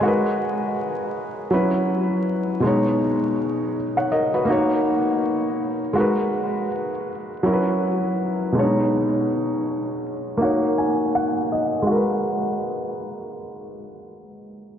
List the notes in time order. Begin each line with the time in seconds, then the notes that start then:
Already playing: D#5 G#5
0.01 G#3 F#4
0.05 A#4 B4
1.50 F#3 C#4 E4 B4
2.60 B2 G#3
2.65 D#4 C#5
3.97 C#5 F#5
4.12 A#4 D#5
4.34 F#4 B4
4.45 A#3 D#4
4.50 F#4 C#5
5.93 G#3 F#4
5.98 A#4 B4
7.43 F#3 C#4 E4 A#4
7.53 B4
8.52 B2 G#3
8.57 D4 C#5
8.63 D#4
10.37 A#3 D#4
10.42 F#4 C#5
10.78 G#5
11.15 F#5
11.52 D#5
11.82 G#3
11.87 F#4
11.91 A#4
11.96 B4